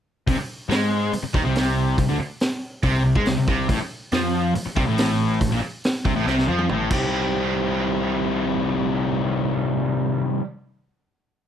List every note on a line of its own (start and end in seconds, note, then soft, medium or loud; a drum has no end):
0.27 0.37 C2 medium
0.27 0.37 C3 loud
0.27 kick loud
0.27 open hi-hat medium
0.38 muted overdriven electric guitar stroke medium
0.38 muted picked electric bass stroke soft
0.69 1.09 G#2 medium
0.69 1.12 G#3 loud
0.69 snare loud
0.69 open hi-hat medium
1.13 muted overdriven electric guitar stroke medium
1.13 muted picked electric bass stroke soft
1.13 open hi-hat medium
1.23 muted overdriven electric guitar stroke medium
1.23 muted picked electric bass stroke soft
1.34 1.43 D#2 medium
1.34 1.44 D#3 loud
1.34 kick loud
1.34 snare soft
1.44 1.94 C2 medium
1.44 1.97 C3 medium
1.55 snare loud
1.55 open hi-hat medium
1.98 2.07 C2 medium
1.98 2.09 C3 medium
1.98 kick medium
1.98 open hi-hat medium
2.08 2.18 D2 medium
2.08 2.19 D3 loud
2.19 muted picked electric bass stroke soft
2.19 muted overdriven electric guitar stroke medium
2.40 snare loud
2.40 open hi-hat medium
2.83 3.03 C2 medium
2.83 3.03 C3 loud
2.83 kick loud
2.83 open hi-hat medium
3.04 3.15 C2 medium
3.04 3.16 C3 medium
3.16 3.26 G#2 loud
3.16 3.26 G#3 loud
3.16 kick loud
3.26 3.37 C2 medium
3.26 3.36 C3 medium
3.26 snare loud
3.26 open hi-hat soft
3.37 3.47 C2 medium
3.37 3.47 C3 medium
3.48 3.68 C2 medium
3.48 3.69 C3 loud
3.48 kick loud
3.69 3.79 A1 medium
3.69 3.79 A2 loud
3.69 kick loud
3.69 open hi-hat medium
3.80 muted picked electric bass stroke soft
3.80 muted overdriven electric guitar stroke medium
4.12 4.52 F2 loud
4.12 4.55 F3 loud
4.12 snare loud
4.12 open hi-hat medium
4.55 muted overdriven electric guitar stroke medium
4.55 muted picked electric bass stroke soft
4.55 open hi-hat medium
4.66 muted overdriven electric guitar stroke medium
4.66 muted picked electric bass stroke soft
4.76 4.87 C2 medium
4.76 4.86 C3 loud
4.76 kick loud
4.87 5.38 A1 medium
4.87 5.39 A2 loud
4.98 snare loud
4.98 open hi-hat medium
5.40 5.51 A1 medium
5.40 5.51 A2 medium
5.40 kick medium
5.40 open hi-hat medium
5.52 5.62 A#1 medium
5.52 5.61 A#2 loud
5.62 muted overdriven electric guitar stroke soft
5.62 muted picked electric bass stroke soft
5.84 snare loud
5.84 open hi-hat medium
6.05 6.15 C2 medium
6.05 6.15 C3 loud
6.05 kick loud
6.16 6.26 A1 medium
6.16 6.26 A2 loud
6.26 6.46 C2 medium
6.26 6.48 C3 loud
6.26 snare medium
6.39 snare medium
6.48 6.68 F2 medium
6.48 6.69 F3 loud
6.59 high tom medium
6.69 6.90 A1 loud
6.69 6.90 A2 loud
6.69 mid tom medium
6.90 10.21 C2 medium
6.90 10.40 C3 loud
6.90 10.41 D#3 loud
6.90 10.42 G3 loud
6.90 10.43 C4 loud
6.90 10.44 G4 loud
6.90 kick loud
6.90 crash medium